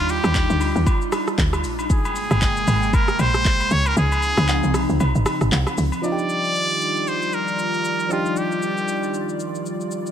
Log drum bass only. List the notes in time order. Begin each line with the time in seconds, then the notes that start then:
Already playing: D#2
0.24 D#2
0.50 D2
0.76 D#2
1.38 D2
1.64 A#1
1.90 G#1
2.31 G1
2.67 G#1
3.19 A#1
3.71 C#2
3.97 C#2
4.38 C#2
4.63 C2
4.89 C#2
5.00 C2
5.15 G#1
5.41 G#1
5.52 C2
5.78 C#2